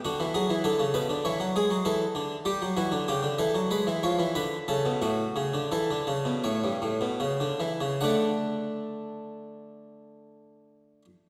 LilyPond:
<<
  \new Staff \with { instrumentName = "Harpsichord" } { \time 4/4 \key d \major \tempo 4 = 88 fis'8 gis'8 a'8 b'8 cis''8 gis'8 a'4 | g'8 fis'8 g'8 a'8 b'8 cis''8 b'8 a'8 | fis'4 a'4 cis''2 | <a d' fis''>1 | }
  \new Staff \with { instrumentName = "Harpsichord" } { \clef bass \time 4/4 \key d \major d16 e16 fis16 e16 d16 cis16 b,16 d16 e16 fis16 gis16 fis16 e8 d8 | g16 fis16 e16 d16 cis16 d16 e16 fis16 gis16 e16 eis16 e16 d8 cis16 b,16 | a,8 cis16 d16 e16 d16 cis16 b,16 a,16 g,16 a,16 b,16 cis16 d16 e16 cis16 | d1 | }
>>